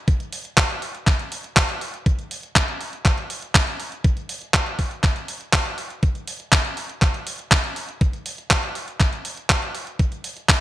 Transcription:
0.08 kick, closed hi-hat
0.20 closed hi-hat
0.32 open hi-hat
0.45 closed hi-hat
0.57 kick, clap, closed hi-hat
0.70 closed hi-hat
0.82 open hi-hat
0.95 closed hi-hat
1.07 kick, clap, closed hi-hat
1.19 closed hi-hat
1.32 open hi-hat
1.44 closed hi-hat
1.57 kick, clap, closed hi-hat
1.69 closed hi-hat
1.81 open hi-hat
1.94 closed hi-hat
2.06 kick, closed hi-hat
2.19 closed hi-hat
2.31 open hi-hat
2.43 closed hi-hat
2.56 kick, clap
2.68 closed hi-hat
2.81 open hi-hat
2.93 closed hi-hat
3.05 kick, clap, closed hi-hat
3.18 closed hi-hat
3.30 open hi-hat
3.42 closed hi-hat
3.55 kick, clap, closed hi-hat
3.67 closed hi-hat
3.80 open hi-hat
3.92 closed hi-hat
4.04 kick, closed hi-hat
4.17 closed hi-hat
4.29 open hi-hat
4.42 closed hi-hat
4.54 kick, clap, closed hi-hat
4.66 closed hi-hat
4.79 kick, open hi-hat
4.91 closed hi-hat
5.03 kick, clap, closed hi-hat
5.16 closed hi-hat
5.28 open hi-hat
5.41 closed hi-hat
5.53 kick, clap, closed hi-hat
5.66 closed hi-hat
5.78 open hi-hat
5.90 closed hi-hat
6.03 kick, closed hi-hat
6.15 closed hi-hat
6.27 open hi-hat
6.40 closed hi-hat
6.52 kick, clap, closed hi-hat
6.65 closed hi-hat
6.77 open hi-hat
6.89 closed hi-hat
7.02 kick, clap, closed hi-hat
7.14 closed hi-hat
7.27 open hi-hat
7.39 closed hi-hat
7.51 kick, clap, closed hi-hat
7.64 closed hi-hat
7.76 open hi-hat
7.89 closed hi-hat
8.01 kick, closed hi-hat
8.13 closed hi-hat
8.26 open hi-hat
8.38 closed hi-hat
8.51 kick, clap, closed hi-hat
8.63 closed hi-hat
8.75 open hi-hat
8.88 closed hi-hat
9.00 kick, clap, closed hi-hat
9.13 closed hi-hat
9.25 open hi-hat
9.37 closed hi-hat
9.50 kick, clap, closed hi-hat
9.62 closed hi-hat
9.75 open hi-hat
9.87 closed hi-hat
9.99 kick, closed hi-hat
10.12 closed hi-hat
10.24 open hi-hat
10.37 closed hi-hat
10.49 kick, clap, closed hi-hat

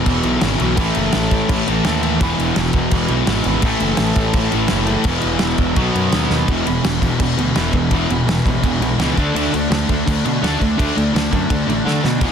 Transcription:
Already playing: E2 B2 E3
0.06 E1 E2 B2, kick, crash
0.10 E3
0.23 B1 E2 B2 E3, crash
0.40 G#1 E2 B2 E3, snare, crash
0.60 B1 E2 B2 E3, crash
0.76 A1 A2 E3 A3, kick, crash
0.95 F#1, crash
1.12 A1, snare, crash
1.31 A1, kick, crash
1.48 A1 A2 E3 A3, kick, crash
1.67 A1 A2 E3 A3, crash
1.84 D#2 A2 E3 A3, snare, crash
2.03 A2 E3 A3, crash
2.20 E1 E2 B2 E3, kick, crash
2.38 E1, crash
2.56 E1, snare, crash
2.73 E1, kick, crash
2.91 E1 E2 B2 E3, kick, crash
3.08 B1 E2 B2 E3, crash
3.27 G#1 E2 B2 E3, snare, crash
3.44 G#1 B2 E3, crash
3.48 E2
3.62 A1 A2 E3 A3, kick, crash
3.80 F#1, crash
3.97 A1, snare, crash
4.16 A1, kick, crash
4.33 A1 A2 E3 A3, kick, crash
4.52 A1 A2 E3 A3, crash
4.68 F#1 A2 E3, snare, crash
4.73 A3
4.86 A2 E3 A3, crash
5.04 E1 E2 B2 E3, kick, crash
5.21 E1, crash
5.39 E1, snare, crash
5.58 E1, kick, crash
5.75 B1 B2 F#3 B3, kick, crash
5.95 F#2, crash
6.12 D#2, snare, crash
6.30 D#2, snare
6.48 E1 E2 B2 E3, kick, crash
6.66 E1 E2 B2 E3, crash
6.84 E1 E2 B2 E3, snare, crash
7.02 E1 E2 B2 E3, kick, crash
7.20 E1 E2 B2 E3, kick, crash
7.37 D2 E2 B2 E3, crash
7.55 E1 E2 B2 E3, snare, crash
7.73 E1 E2 B2 E3, kick, crash
7.90 E1 E2 B2 E3, kick, crash
8.09 E1 E2 B2 E3, crash
8.26 E1 E2 B2 E3, snare, crash
8.45 A1 E2 B2 E3, kick, crash
8.62 E1 E2 B2 E3, kick, crash
8.80 B1 E2 B2 E3, crash
8.98 C#2 E2 B2 E3, snare, crash
9.15 D2 D3 A3 D4, kick, crash
9.34 D2 D3 A3 D4, crash
9.52 D2 D3 A3 D4, crash
9.70 D2 D3 A3 D4, snare, crash
9.88 D2 D3 A3 D4, kick, crash
10.06 D2 D3 A3 D4, kick, crash
10.24 B2 D3 A3 D4, crash
10.41 D2 D3 A3 D4, snare, crash
10.60 D2 D3 A3 D4, kick, crash
10.77 D2 D3 A3 D4, kick, crash
10.96 D2 D3 A3 D4, crash
11.13 D2 D3 A3 D4, snare, crash
11.31 F#2 D3 A3 D4, kick, crash
11.50 D2 D3 A3 D4, kick, crash
11.67 A1 D3 A3 D4, crash
11.86 D3 A3 D4, snare
12.02 B2 D3 A3 D4, snare
12.19 E1 E2 B2 E3, kick, crash

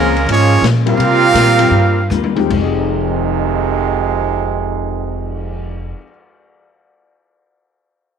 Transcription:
Already playing: C#2 A#2 C#3 F3 G#3 A#3 C4 C#4 F4 G#4 A#4
0.17 ride
0.26 G#2 A#2 F3 G#3 C#4, ride
0.31 G#3 A#3 C#4 F4 G#4 C#5
0.61 A#2 F3 G#3, snare, hi-hat pedal, ride
0.66 C#4
0.86 G3 A#3 C4 F4 G4 A#4 F5, ride
0.97 C3 G3, ride
1.01 A#3 F4
1.34 A#2 C3 G3 A#3 F4, snare, hi-hat pedal, ride
1.58 G3 A#3 C4 F4 G4, ride
1.71 G2 C3 G3
1.75 A#3 F4
2.10 D#2 C3 G3 A#3 F4, hi-hat pedal, high tom
2.24 high tom
2.35 F2 G#3 C4 D#4 F4 G4, high tom
2.44 F3
2.50 F1 F2 C3 D#3 G#3 C4 D#4, kick, crash
2.57 D#4 G4
2.63 G#4
2.76 cymbal swell

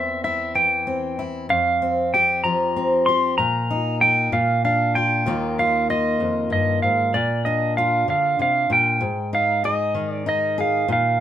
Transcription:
Already playing: E2 C4 E5
0.24 E4 E5
0.55 E3 G5
0.87 C4
1.19 E4
1.49 F2 F5
1.82 C4
2.14 G4 G5
2.44 F3 A#5
2.76 C4
3.06 G4 C6
3.38 A#2 A#5
3.71 D#4
4.01 D#4 G5
4.32 A#2 F5
4.65 D4 F5
4.95 F4 G5
5.26 D#2 D#3 A#3 F4
5.59 F4 F5
5.90 F4 D#5
6.20 F2
6.50 G2 D#5
6.82 G#2 F5
7.14 A#2 D5
7.45 D4 D#5
7.77 F4 F5
8.08 D3 F5
8.39 C3 F5
8.70 A#2 G5
9.01 G#2
9.33 D#4 F5
9.64 G#4 D#5
9.94 D#3
10.10 D5
10.26 D#4 D#5
10.58 G#4 F5
10.88 A#2
10.93 F5

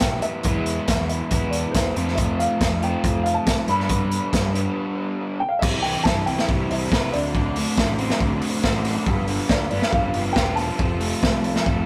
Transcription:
Already playing: E3 G3 B3 E4
0.00 B1 G5, kick, snare, closed hi-hat
0.22 E5, closed hi-hat
0.43 E2 E3 G#3 B3, kick, closed hi-hat
0.49 E4
0.66 closed hi-hat
0.88 E2, kick, snare, closed hi-hat
1.09 E5, closed hi-hat
1.31 E2 E3 G#3 B3 E4, kick, closed hi-hat
1.50 D5, closed hi-hat
1.71 E2 C5, kick, snare, closed hi-hat
1.95 F2 F3 A3 C4 F4, closed hi-hat
2.08 snare
2.15 E5, kick, closed hi-hat
2.39 F5, closed hi-hat
2.61 F2, kick, snare, closed hi-hat
2.82 F3 A3 C4 F4 G5, closed hi-hat
3.04 F2, kick, closed hi-hat
3.24 F5, closed hi-hat
3.34 A5
3.47 C2, kick, snare, closed hi-hat
3.67 G2 D3 G3 B3 D4 B5, closed hi-hat
3.80 snare
3.89 kick, closed hi-hat
4.12 closed hi-hat
4.33 G2, kick, snare, closed hi-hat
4.54 G2 D3 G3 B3 D4, closed hi-hat
5.40 G5
5.49 F5
5.59 C2 C3 E3 E4 C5 E5 B5, kick, crash
5.63 G3 C4 E4
5.81 E3 G3 C4 E4 G5, open hi-hat
6.03 G2 E3 G3 C4 E4 A5, kick, snare
6.26 C2 G3 C4 E4 G5, open hi-hat
6.39 snare
6.49 C2 G3, kick
6.70 C2 C4 E5, open hi-hat
6.91 C2 C3 E3 G3 C4 E4 B4, kick, snare
7.11 D2 A3 C4 F#4 D5 C6, open hi-hat
7.15 D3 F#4 D5
7.34 D3 A3 C4 F#4, kick
7.54 A3 C4 F#4, open hi-hat
7.77 A1 D3 A3 C4 F#4, kick, snare
7.99 A3 C4 F#4, open hi-hat
8.10 snare
8.20 D2 D3, kick
8.42 A3, open hi-hat
8.63 A1 D3 A3 C4 F#4, kick, snare
8.84 A3 C4 F#4, snare, open hi-hat
9.06 G1 G2 D3 F3 B3 F4 G4 F5 B5, kick
9.27 D3 F3 B3 F4, open hi-hat
9.48 D2 D3 F3 B3 F4 D5, kick, snare
9.70 G1 F3 B3 F4 D5, open hi-hat
9.82 snare
9.92 G1 D3 F5, kick
10.14 G1 F3, open hi-hat
10.33 E1 G2 G5, kick, snare
10.37 D3 F3 B3 F4
10.55 B3 F4 A5, snare, open hi-hat
10.60 F3
10.78 F1 F3 A3 C4 F4 E5 A5, kick
10.82 F4
10.99 A3 C4 F4, open hi-hat
11.21 C2 F3 A3 C4 F4, kick, snare
11.43 A3 C4 F4, open hi-hat
11.56 snare
11.66 F1 A3, kick

